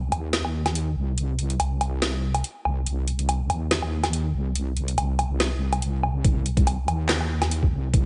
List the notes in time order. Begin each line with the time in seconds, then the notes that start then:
Already playing: C2
0.12 D#2, closed hi-hat, low woodblock
0.33 snare, closed hi-hat
0.45 low woodblock
0.66 snare, closed hi-hat, low woodblock
0.75 closed hi-hat
0.96 C2
1.18 closed hi-hat
1.39 closed hi-hat
1.50 closed hi-hat
1.60 C2, closed hi-hat, low woodblock
1.81 closed hi-hat, low woodblock
2.02 snare, closed hi-hat
2.35 closed hi-hat, low woodblock
2.44 closed hi-hat
2.65 C2, low woodblock
2.86 C2, closed hi-hat
3.08 closed hi-hat
3.19 closed hi-hat
3.29 closed hi-hat, low woodblock
3.50 D#2, closed hi-hat, low woodblock
3.71 snare, closed hi-hat
3.82 low woodblock
4.04 snare, closed hi-hat, low woodblock
4.13 closed hi-hat
4.34 C2
4.55 closed hi-hat
4.77 closed hi-hat
4.88 closed hi-hat
4.98 C2, closed hi-hat, low woodblock
5.19 closed hi-hat, low woodblock
5.40 snare, closed hi-hat
5.73 closed hi-hat, low woodblock
5.82 closed hi-hat
6.03 low woodblock
6.24 C2, kick, closed hi-hat
6.46 closed hi-hat
6.57 kick, closed hi-hat
6.67 closed hi-hat, low woodblock
6.88 D#2, closed hi-hat, low woodblock
7.09 snare, clap, closed hi-hat
7.21 low woodblock
7.42 snare, closed hi-hat, low woodblock
7.51 closed hi-hat
7.63 kick
7.72 C2
7.94 kick, closed hi-hat